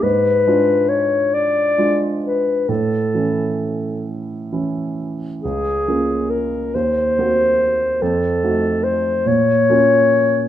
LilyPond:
<<
  \new Staff \with { instrumentName = "Clarinet" } { \time 6/8 \key a \phrygian \tempo 4. = 46 b'4 cis''8 d''4 b'8 | a'4. r4. | \key bes \minor aes'4 bes'8 c''4. | a'4 c''8 des''4. | }
  \new Staff \with { instrumentName = "Grand piano" } { \time 6/8 \key a \phrygian gis,8 <gis d' eis'>4. <gis d' eis'>4 | a,8 <e cis' e'>4. <e cis' e'>4 | \key bes \minor des,8 <bes des' f'>4 ees,8 <bes c' ges'>4 | f,8 <a ees' ges'>4 bes,8 <bes des' f'>4 | }
>>